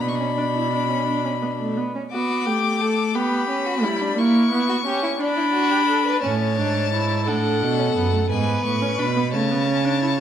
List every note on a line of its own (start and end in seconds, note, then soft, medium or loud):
0.01 1.74 B2 medium
0.01 0.19 B3 medium
0.01 1.73 D4 medium
0.01 0.10 B5 medium
0.08 0.17 C#6 medium
0.15 1.77 B5 medium
0.20 0.27 C#4 medium
0.37 0.44 D4 medium
0.55 0.72 E4 medium
0.73 0.89 D4 medium
0.89 1.06 C#4 medium
1.07 1.24 D4 medium
1.25 1.32 C#4 medium
1.42 1.49 B3 medium
1.60 1.79 A3 medium
1.77 1.94 B3 medium
1.95 2.02 C#4 medium
2.12 2.48 B3 medium
2.12 2.48 F#4 medium
2.12 3.17 D6 medium
2.46 3.17 A3 medium
2.46 2.82 G4 medium
2.80 3.16 A4 medium
3.15 3.49 B3 medium
3.15 3.68 G4 medium
3.15 4.20 B5 medium
3.49 3.85 C#4 medium
3.66 3.85 F#4 medium
3.83 4.16 G3 medium
3.83 4.03 E4 medium
4.01 4.20 D4 medium
4.17 4.51 A#3 medium
4.17 4.68 E4 medium
4.17 5.22 C#6 medium
4.52 4.85 B3 medium
4.69 4.76 F#4 medium
4.86 5.20 C#4 medium
4.86 5.03 G4 medium
5.03 5.10 E4 medium
5.20 5.36 D4 medium
5.20 6.22 D4 loud
5.20 6.23 B5 medium
5.37 5.44 E4 medium
5.53 5.73 F#4 medium
5.71 5.87 G4 medium
5.88 6.05 A4 medium
6.05 6.22 B4 medium
6.22 6.60 A2 medium
6.22 6.56 C#4 medium
6.22 7.22 C#5 medium
6.22 7.29 A5 medium
6.58 7.29 G#2 medium
6.58 6.92 D4 medium
6.93 7.29 E4 medium
7.27 7.63 A2 medium
7.27 7.80 D4 medium
7.27 8.28 A4 medium
7.27 8.29 F#5 medium
7.62 7.96 B2 medium
7.79 7.95 C#4 medium
7.96 8.30 F#2 medium
7.96 8.12 B3 medium
8.12 8.19 A3 medium
8.30 8.64 G#2 medium
8.30 8.83 B3 medium
8.30 9.31 B4 medium
8.30 8.64 G#5 medium
8.65 8.98 A2 medium
8.65 9.01 C#6 medium
8.82 8.98 C#4 medium
8.98 9.35 B2 medium
8.98 9.05 D4 medium
8.98 9.33 B5 medium
9.16 9.23 B3 medium
9.33 10.20 C#3 medium
9.33 9.52 A3 medium
9.33 10.20 C#5 medium
9.33 10.20 A5 medium
9.51 9.67 B3 medium
9.68 9.86 C#4 medium
9.85 10.01 D4 medium
10.02 10.08 E4 medium